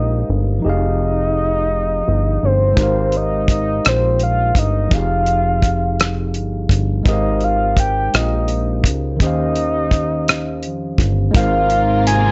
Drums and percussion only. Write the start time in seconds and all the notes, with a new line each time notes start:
2.77 kick, closed hi-hat
3.12 closed hi-hat
3.48 kick, closed hi-hat
3.85 cross-stick, closed hi-hat
4.19 closed hi-hat
4.55 kick, closed hi-hat
4.91 kick, closed hi-hat
5.26 closed hi-hat
5.62 kick, closed hi-hat
5.99 cross-stick, closed hi-hat
6.34 closed hi-hat
6.69 kick, closed hi-hat
7.05 kick, closed hi-hat
7.40 closed hi-hat
7.77 kick, closed hi-hat
8.14 cross-stick, closed hi-hat
8.48 closed hi-hat
8.84 kick, closed hi-hat
9.20 kick, closed hi-hat
9.55 closed hi-hat
9.91 kick, closed hi-hat
10.28 cross-stick, closed hi-hat
10.62 closed hi-hat
10.98 kick, closed hi-hat
11.34 kick, closed hi-hat
11.70 closed hi-hat
12.07 closed hi-hat